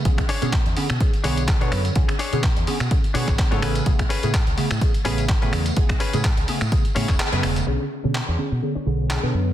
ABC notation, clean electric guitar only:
X:1
M:4/4
L:1/16
Q:"Swing 16ths" 1/4=126
K:Bdor
V:1 name="Clean electric guitar"
z2 [DGc]2 z6 [DGc]2 z [DGc] z2 | z2 [DGc]2 z6 [DGc]2 z [DGc] [CGB]2 | z2 [CGB]2 z6 [CGB]2 z [CGB] z2 | z2 [CGB]2 z6 [CGc]2 z [CGB] z2 |
[DGc] z2 [DGc] z [DGc]2 z2 [DGc] z2 [DGc]2 z2 |]